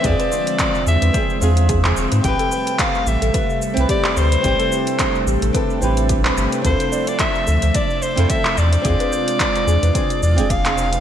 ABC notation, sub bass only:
X:1
M:4/4
L:1/16
Q:"Swing 16ths" 1/4=109
K:Am
V:1 name="Sub bass" clef=bass
E,, z4 z E,, E,, z2 E,,3 E,, E,,, ^G,, | A,,, z4 z A,,, A,,, z3 C,, z2 D,, z | A,,, z4 z A,,, A,,, z2 A,,,3 z G,,, z | D,, z4 z D,, D,, z3 F,, z2 E,, z |
E,, z4 z E,, E,, z2 E,, E,,,4 z |]